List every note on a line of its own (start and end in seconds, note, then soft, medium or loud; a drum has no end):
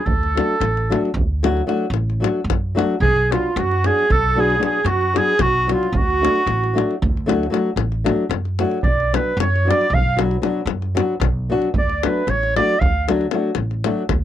0.05 0.39 D2 medium
0.05 1.15 A4 medium
0.05 1.16 A4 medium
0.05 davul low loud
0.23 davul high soft
0.35 0.54 F#3 medium
0.35 0.54 A3 medium
0.35 0.54 D4 medium
0.35 0.55 F#4 medium
0.35 davul high medium
0.60 0.93 A1 medium
0.60 davul high medium
0.77 davul high soft
0.90 1.09 F#3 medium
0.90 1.09 A3 medium
0.90 1.09 D4 medium
0.90 1.09 F#4 medium
0.90 davul high medium
1.05 davul high soft
1.14 1.60 D2 loud
1.14 davul low loud
1.43 1.61 F#3 loud
1.43 1.61 A3 medium
1.43 1.61 D4 medium
1.43 1.62 F#4 loud
1.43 davul high medium
1.57 davul high soft
1.67 1.85 F#3 medium
1.67 1.85 A3 medium
1.67 1.85 D4 medium
1.67 1.85 F#4 loud
1.67 davul high medium
1.90 2.23 A1 loud
1.90 davul high medium
2.10 davul high soft
2.20 2.39 F#3 medium
2.20 2.39 A3 medium
2.20 2.40 D4 medium
2.20 2.40 F#4 medium
2.24 davul high medium
2.44 2.78 F#2 loud
2.50 davul high medium
2.50 davul low medium
2.75 2.94 F#3 medium
2.75 2.94 A3 medium
2.75 2.94 D4 medium
2.75 2.95 F#4 loud
2.75 davul high medium
3.00 3.33 B1 loud
3.00 3.33 G#4 loud
3.00 3.34 G#4 loud
3.00 davul low loud
3.16 davul high soft
3.30 3.48 F#3 medium
3.30 3.48 B3 medium
3.30 3.49 D4 medium
3.30 3.61 F4 medium
3.30 3.57 F4 medium
3.30 3.49 F#4 medium
3.30 davul high medium
3.56 3.88 F#2 loud
3.56 3.87 F#4 medium
3.56 3.88 F#4 loud
3.56 davul high medium
3.71 davul high soft
3.84 4.03 F#3 medium
3.84 4.03 B3 medium
3.84 4.03 D4 soft
3.84 4.04 F#4 medium
3.84 4.13 G#4 loud
3.84 davul high medium
3.99 davul high soft
4.10 4.55 B1 loud
4.10 4.41 A4 loud
4.10 davul low medium
4.35 4.54 F#3 medium
4.35 4.54 B3 medium
4.35 4.54 D4 medium
4.35 4.55 F#4 loud
4.39 4.62 G#4 loud
4.39 4.63 G#4 loud
4.50 davul high soft
4.58 4.77 F#3 medium
4.58 4.78 B3 medium
4.58 4.78 D4 medium
4.58 4.78 F#4 medium
4.63 4.90 G#4 medium
4.63 4.88 G#4 medium
4.63 davul high medium
4.84 5.17 F#2 loud
4.84 5.20 F#4 loud
4.84 5.18 F#4 loud
4.84 davul high medium
5.01 davul high soft
5.13 5.32 F#3 medium
5.13 5.32 B3 medium
5.13 5.33 D4 medium
5.13 5.33 F#4 medium
5.13 5.44 G#4 medium
5.13 davul high medium
5.18 5.43 G#4 loud
5.39 5.72 B1 loud
5.39 5.70 F#4 loud
5.39 5.71 F#4 medium
5.39 davul high medium
5.39 davul low medium
5.67 5.86 F#3 medium
5.67 5.87 B3 medium
5.67 5.87 D4 medium
5.67 5.87 F#4 medium
5.67 davul high medium
5.73 5.99 F4 medium
5.83 davul high soft
5.92 6.25 D2 loud
5.92 davul low loud
5.97 7.04 F#4 loud
5.97 7.04 F#4 medium
6.10 davul high soft
6.21 6.40 F#3 medium
6.21 6.40 A3 medium
6.21 6.41 D4 medium
6.21 6.41 F#4 medium
6.21 davul high medium
6.36 davul high soft
6.46 6.79 A1 loud
6.46 davul high medium
6.64 davul high soft
6.74 6.93 F#3 medium
6.74 6.94 A3 medium
6.74 6.94 D4 medium
6.74 6.95 F#4 medium
6.78 davul high medium
6.91 davul high soft
7.02 7.47 D2 loud
7.02 davul low loud
7.17 davul high soft
7.26 7.45 F#3 medium
7.26 7.45 A3 medium
7.26 7.46 D4 medium
7.26 7.46 F#4 loud
7.26 davul high medium
7.43 davul high soft
7.50 7.69 F#3 medium
7.50 7.69 A3 medium
7.50 7.70 D4 medium
7.50 7.70 F#4 medium
7.50 davul high medium
7.76 8.09 A1 medium
7.76 davul high medium
7.92 davul high soft
8.04 8.23 F#3 medium
8.04 8.23 A3 medium
8.04 8.24 D4 medium
8.04 8.24 F#4 medium
8.04 davul high medium
8.29 8.62 F#2 medium
8.29 davul high medium
8.45 davul high soft
8.59 8.77 F#3 loud
8.59 8.78 A3 medium
8.59 8.78 D4 medium
8.59 8.78 F#4 medium
8.59 davul high medium
8.71 davul high soft
8.83 9.16 B1 medium
8.83 9.15 D5 medium
8.83 9.17 D5 medium
8.83 davul low loud
9.00 davul high soft
9.13 9.31 F#3 medium
9.13 9.32 B3 medium
9.13 9.32 D4 medium
9.13 9.32 F#4 medium
9.13 9.38 B4 medium
9.13 9.39 B4 medium
9.13 davul high medium
9.37 9.69 F#2 loud
9.37 9.69 C#5 medium
9.37 9.72 C#5 medium
9.37 davul high medium
9.56 davul high soft
9.65 9.84 F#3 medium
9.65 9.85 B3 medium
9.65 9.85 D4 medium
9.65 9.85 F#4 medium
9.65 9.95 D5 medium
9.70 9.96 D5 loud
9.70 davul high medium
9.81 davul high soft
9.90 10.35 B1 loud
9.90 10.20 F5 loud
9.90 davul low loud
9.94 10.20 F5 loud
10.17 10.35 F#3 medium
10.17 10.36 B3 medium
10.17 10.36 D4 medium
10.17 10.36 F#4 medium
10.17 davul high medium
10.31 davul high soft
10.42 10.60 F#3 medium
10.42 10.60 B3 medium
10.42 10.60 D4 medium
10.42 10.61 F#4 medium
10.42 davul high medium
10.65 10.98 F#2 loud
10.65 davul high medium
10.82 davul high soft
10.95 11.13 F#3 medium
10.95 11.13 B3 medium
10.95 11.14 D4 medium
10.95 11.14 F#4 medium
10.95 davul high loud
11.20 11.52 B1 loud
11.20 davul high loud
11.20 davul low medium
11.49 11.67 F#3 medium
11.49 11.68 B3 medium
11.49 11.68 D4 medium
11.49 11.68 F#4 loud
11.62 davul high soft
11.74 12.06 D2 medium
11.74 davul low loud
11.78 12.03 D5 medium
11.89 davul high soft
12.03 12.21 F#3 medium
12.03 12.21 A3 medium
12.03 12.22 D4 medium
12.03 12.22 F#4 medium
12.03 12.32 B4 medium
12.03 davul high medium
12.08 12.32 B4 medium
12.27 12.59 A1 medium
12.27 12.56 C#5 loud
12.27 12.57 C#5 medium
12.27 davul high medium
12.43 davul high soft
12.56 12.74 F#3 medium
12.56 12.75 A3 medium
12.56 12.75 D4 medium
12.56 12.75 F#4 medium
12.56 12.81 D5 loud
12.56 davul high medium
12.69 davul high soft
12.79 13.26 D2 loud
12.79 13.07 F5 loud
12.79 davul low loud
13.08 13.25 F#3 loud
13.08 13.25 A3 medium
13.08 13.26 D4 medium
13.08 13.26 F#4 loud
13.08 davul high medium
13.21 davul high soft
13.31 13.49 F#3 medium
13.31 13.49 A3 medium
13.31 13.50 D4 medium
13.31 13.50 F#4 loud
13.31 davul high medium
13.55 13.87 A1 loud
13.55 davul high medium
13.71 davul high soft
13.84 14.02 F#3 medium
13.84 14.02 A3 medium
13.84 14.03 D4 medium
13.84 14.03 F#4 medium
13.84 davul high medium
14.09 14.24 D2 loud
14.09 davul high medium
14.09 davul low medium